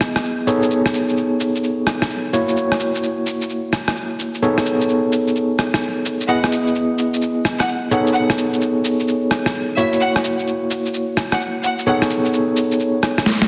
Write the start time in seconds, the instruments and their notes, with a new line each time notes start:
Already playing: tine electric piano B3 E4 G#4 D#5
0.01 cross-stick, cabasa
0.16 cross-stick, cabasa
0.24 cabasa
0.47 tine electric piano B3 D#4 G#4 A4 C#5, cabasa
0.62 cabasa
0.71 cabasa
0.86 cross-stick
0.94 cabasa
1.09 cabasa
1.17 cabasa
1.40 cabasa
1.55 cabasa
1.64 cabasa
1.87 cross-stick, cabasa
2.02 cross-stick, cabasa
2.10 cabasa
2.33 tine electric piano A#3 E4 F#4 C#5, cabasa
2.48 cabasa
2.57 cabasa
2.72 cross-stick
2.80 cabasa
2.95 cabasa
3.03 cabasa
3.26 cabasa
3.42 cabasa
3.50 cabasa
3.73 cross-stick, cabasa
3.88 cross-stick, cabasa
3.96 cabasa
4.19 cabasa
4.34 cabasa
4.42 tine electric piano B3 D#4 G#4 A4 C#5, cabasa
4.58 cross-stick
4.66 cabasa
4.81 cabasa
4.89 cabasa
5.12 cabasa
5.28 cabasa
5.36 cabasa
5.59 cross-stick, cabasa
5.74 cross-stick, cabasa
5.82 cabasa
6.05 cabasa
6.21 cabasa
6.29 tine electric piano B3 E4 G#4 D#5, violin section F#5, cabasa
6.44 cross-stick
6.52 cabasa
6.67 cabasa
6.75 cabasa
6.98 cabasa
7.14 cabasa
7.22 cabasa
7.45 cross-stick, cabasa
7.60 violin section F#5, cross-stick, cabasa
7.68 cabasa
7.91 tine electric piano B3 D#4 G#4 A4 C#5, violin section F#5, cabasa
8.07 cabasa
8.14 violin section F#5, cabasa
8.30 cross-stick
8.38 cabasa
8.53 cabasa
8.61 cabasa
8.85 cabasa
9.00 cabasa
9.08 cabasa
9.31 cross-stick, cabasa
9.46 cross-stick, cabasa
9.54 cabasa
9.77 tine electric piano A#3 E4 F#4 C#5, violin section E5, cabasa
9.93 cabasa
10.01 violin section F#5, cabasa
10.16 cross-stick
10.24 cabasa
10.39 cabasa
10.47 cabasa
10.71 cabasa
10.86 cabasa
10.94 cabasa
11.17 cross-stick, cabasa
11.32 violin section F#5, cross-stick, cabasa
11.40 cabasa
11.63 violin section F#5, cabasa
11.79 cabasa
11.87 tine electric piano B3 D#4 G#4 A4 C#5, violin section F#5, cabasa
12.02 cross-stick
12.10 cabasa
12.25 cabasa
12.33 cabasa
12.56 cabasa
12.72 cabasa
12.80 cabasa
13.03 cross-stick, cabasa
13.18 cross-stick, cabasa
13.26 snare
13.42 snare